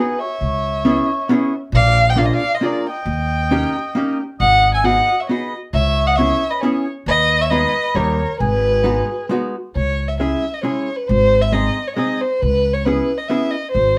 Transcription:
Already playing: B3 D#4 F#4 G#4
0.00 G#4 B4
0.19 C#5 E5
0.41 C#2
0.85 B3 C#4 E4 G#4
1.29 B3 C#4 E4 G#4
1.72 A#1 D5 F5
2.08 D#5 G5
2.16 A#3 D4 F4 G#4 F5
2.21 D5
2.25 C5 D#5
2.34 D5 F5
2.54 C5 D#5
2.61 A#3 D4 F4 G#4
2.65 A#4 D5
2.90 D#5 G5
3.05 D#2
3.51 A#3 C#4 D#4 G4
3.95 A#3 C#4 D#4 G4
4.40 G#1 D#5 F#5
4.74 E5 G#5
4.84 B3 D#4 F#4 G#4 D#5 F#5
5.20 C#5 E5
5.29 B3 D#4 F#4 G#4 B4 D#5
5.73 C#2 C#5 E5
6.06 D#5 F#5
6.16 B3 C#4 C#5 E5
6.20 E4 G#4
6.50 B4 D#5
6.60 B3 C#4 E4 G#4 C#5
7.06 D#2 B4 D#5
7.41 C#5 E5
7.50 G#3 B3 D#4 G#4 B4 D#5
7.95 D#2 G3 A#3 D#4 G4 A#4 C#5
8.40 G#1 G#4 B4
8.84 G#3 B3 D#4 F#4
9.29 G#3 B3 D#4 F#4
9.75 C#2 C#5
10.08 E5
10.20 G#3 C#4 E4 G#4 E5
10.54 D#5
10.63 G#3 C#4 E4 G#4 C#5
10.97 B4
11.07 G#1 C5
11.42 E5
11.52 G#3 C4 D#4 G#4 D#5
11.87 C#5
11.96 G#3 C4 D#4 G#4 D#5
12.21 C5
12.41 C#2 B4
12.73 C#5
12.85 B3 C#4 E4 G#4 B4
13.17 D#5
13.28 B3 C#4 E4 G#4 E5
13.51 D#5
13.71 G#1 C5

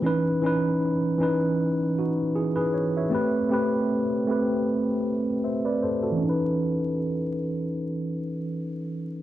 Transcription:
0.02 E3 C#4 D#4
0.06 B4
0.42 E3 C#4 D#4
0.46 B4
1.19 E3 C#4 D#4
1.23 B4
1.99 D#4 F#4
2.35 E4 G#4
2.56 G#4 B4
2.74 C#5
2.97 C#5 E5
3.10 A3 C4 G4
3.14 B4
3.49 A3 C4 G4
3.53 B4
4.27 A3 C4 G4
4.31 B4
5.44 C5 E5
5.65 B4 D5
5.83 A4 C5
6.03 F#4 A4
6.12 E3
6.17 C#4
6.23 D#4
6.29 B4

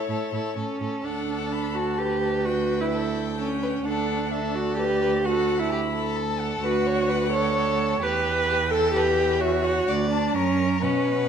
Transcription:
Already playing: C#5
0.09 A2 E4 A4
0.33 A2 E4 A4
0.56 A2 C#4 A4
0.80 A2 A4
1.04 D2 D4 A4 F#5
1.52 B5
1.74 F#4 A5
1.98 G4 B4
2.23 B4
2.45 F#4 G5
2.81 E4
2.91 A4 G5
3.39 C#4 A4
3.63 B4
3.85 D2 D4 A4 F#5
4.31 A4 E5
4.55 F#4 D5
4.77 G4 B4
5.02 B4
5.25 F#4 A4 F#5
5.59 E4
5.71 G4 B5
5.94 A4
6.16 A5
6.40 F#5
6.62 D2 F#4 B4
6.87 C#5
7.09 B4
7.33 A4 C#5
8.02 E2 G4 B4 G5
8.49 G4
8.71 A4
8.94 G4 B4 G5
9.41 F#4 C#5 E5
9.64 F#5
9.87 D2 D5 F#5
10.11 D4 A5
10.34 F#2 C#4 A#4 A#5
10.82 B2 C#4 B4 F#5

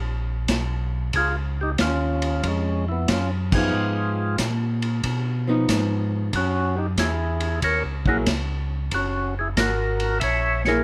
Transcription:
Already playing: A#1
0.48 B1, kick, snare, hi-hat pedal, ride
1.13 C#2 F4 G#4, kick, ride
1.61 D#4 G4
1.78 D#2 F4, kick, snare, hi-hat pedal, ride
1.84 C#4
2.22 ride
2.43 F2 C#4, kick, ride
2.48 G#3
2.89 B3 E4
3.08 F#2 F4, kick, snare, hi-hat pedal, ride
3.12 C#4
3.52 F3 B3 D#4 G#4, kick, crash
3.58 F4
3.74 G#2
4.38 A#2, kick, snare, hi-hat pedal, ride
4.82 ride
5.04 B2, kick, ride
5.48 F3 B3 D#4
5.68 G#2, kick, snare, hi-hat pedal, ride
6.33 F#2 C#4 F#4, kick, ride
6.77 D#4 G4
6.97 E2 E4 G#4, kick, snare, hi-hat pedal, ride
7.40 ride
7.62 D#2 A#4 C#5, kick, ride
7.85 C#2
8.06 A#1 F#3 A#3 E4 F#4 G#4 A#4, kick
8.26 C#2, kick, snare, hi-hat pedal, ride
8.91 F#1 F#4, kick, ride
8.95 C#4
9.39 E4 G#4
9.57 G#1 F#4 A#4, kick, snare, hi-hat pedal, ride
10.00 ride
10.20 A#1 C#5 E5, kick, ride
10.65 F#3 A#3 E4 G#4 A#4 C#5, snare

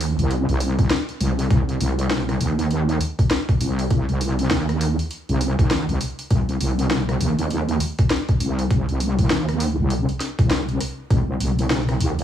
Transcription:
Already playing: D#2
0.01 open hi-hat
0.19 C2, open hi-hat
0.31 open hi-hat
0.49 C2, open hi-hat
0.60 open hi-hat
0.79 kick, open hi-hat
0.90 snare, open hi-hat
1.09 open hi-hat
1.20 C2, open hi-hat
1.39 open hi-hat
1.50 C2, kick, open hi-hat
1.69 open hi-hat
1.80 C2, open hi-hat
1.99 open hi-hat
2.11 snare, open hi-hat
2.29 cross-stick, open hi-hat
2.41 D#2, open hi-hat
2.59 open hi-hat
2.71 open hi-hat
2.89 open hi-hat
3.01 open hi-hat
3.19 kick, open hi-hat
3.31 cross-stick, snare, open hi-hat
3.49 kick, open hi-hat
3.61 C2, open hi-hat
3.79 open hi-hat
3.91 kick, open hi-hat
4.09 C2, open hi-hat
4.21 open hi-hat
4.39 open hi-hat
4.50 D#2, snare, open hi-hat
4.69 cross-stick, open hi-hat
4.81 open hi-hat
4.99 open hi-hat
5.11 open hi-hat
5.29 C2, open hi-hat
5.41 open hi-hat
5.59 D#2, kick, open hi-hat
5.71 snare, open hi-hat
5.89 C2, open hi-hat
6.01 open hi-hat
6.19 open hi-hat
6.31 C2, kick, open hi-hat
6.49 open hi-hat
6.61 C2, open hi-hat
6.79 open hi-hat
6.91 snare, open hi-hat
7.09 cross-stick, open hi-hat
7.21 D#2, open hi-hat
7.39 open hi-hat
7.50 open hi-hat
7.69 open hi-hat
7.80 open hi-hat
7.99 kick, open hi-hat
8.10 cross-stick, snare, open hi-hat
8.29 kick, open hi-hat
8.40 C2, open hi-hat
8.59 open hi-hat
8.70 kick, open hi-hat
8.89 C2, open hi-hat
9.00 open hi-hat
9.19 kick, open hi-hat
9.30 D#2, snare, open hi-hat
9.49 cross-stick, open hi-hat
9.60 open hi-hat
9.79 C2
9.90 open hi-hat
10.09 open hi-hat
10.20 snare, open hi-hat
10.39 C2, kick, open hi-hat
10.50 snare, open hi-hat
10.69 open hi-hat
10.80 cross-stick, open hi-hat
11.10 C2, kick, open hi-hat
11.40 C2, open hi-hat
11.59 open hi-hat
11.70 snare, open hi-hat
11.89 cross-stick, open hi-hat
12.00 D#2, open hi-hat
12.19 open hi-hat

